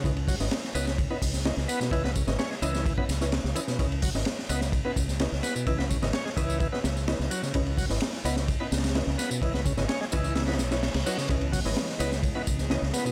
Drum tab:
RD |x-x-----x---x---x-------x---x---|x---x---x---x---x---x---x---x---|x-x-----x---x---x---x---x---x---|x---x---x---x---x---x---x---x---|
HH |----o---------------o-----------|--------------------------------|----o---------------------------|--------------------------------|
TB |x---x-x-x---x-x-x---x-x-x---x-x-|x---x-x-x---x-x-x---x-x-x---x-x-|x---x-x-x---x-x-x---x-x-x---x-x-|x---x-x-x---x-x-x---x-x-x---x-x-|
SD |------o-o-o---o-------o-o-o---o-|--o---o-o-o---o-----o-o-o-o---o-|------o-o-o---o-------o-o-o-o---|--o---o-o-o-------o-o-o-o-o---o-|
BD |o---o-----------o---o-----------|o---o-----------o-o-------------|o---o-----------o---o-----------|o---o-------o---o---------------|

RD |x-x-----x---x---x---xxxxx---x---|x---x---x---x---xxxxx-x-x-x-x---|x-x-----x---x---x---x---x---x---|
HH |----o---------------------------|--------------------------------|----o---------------------------|
TB |x---x-x-x---x-x-x---x-x-x---x-x-|----x-x-x---x-x-x---x-x-x---x-x-|x---x-x-x---x-x-x---x-x-x---x-x-|
SD |------o-o-o---o-----ooooo-o-o---|--o---o-o-o-----ooooo-o-o-o---o-|------o-o-o---o-------o-o-o-o---|
BD |o---o-----------o---------------|o---o-------o-------------------|o---o-----------o---o-----------|